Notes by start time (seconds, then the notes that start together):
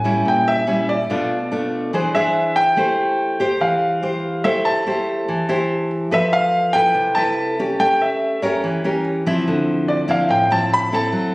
Already playing: A2 G#5
0.04 G3 C#4 E4
0.25 A#2 G5
0.48 E5
0.67 G3 C#4 E4
0.89 D5
1.10 B2 A3 D4 F4
1.52 A3 D4 F4
1.93 E3 D4 G#4 C5
2.15 D4 G#4 C5 E5
2.56 G5
2.77 A3 E4 G4 C5
3.40 G4 C5
3.61 E3 F5
4.03 G4 C5
4.44 A3 E4 G4 C5 E5
4.65 A5
4.87 E4 G4 C5
5.28 E3
5.49 E4 G4 C5
6.11 F3 A4 B4 E5
6.33 F5
6.73 E4 A4 B4 G5
6.95 C3
7.15 E4 A4 B4 A5
7.59 C#4 G4
7.80 A3 G5
8.02 E5
8.42 C#4 G4 A#4 C#5
8.64 E3
8.84 C#4 G4 A#4
9.26 F3 C4 E4
9.48 D3
9.88 D5
10.08 F3 C4 E4 F5
10.29 A2 G5
10.51 F3 C4 E4 A5
10.74 B5
10.92 C4 E4 A4 A5
11.12 F#3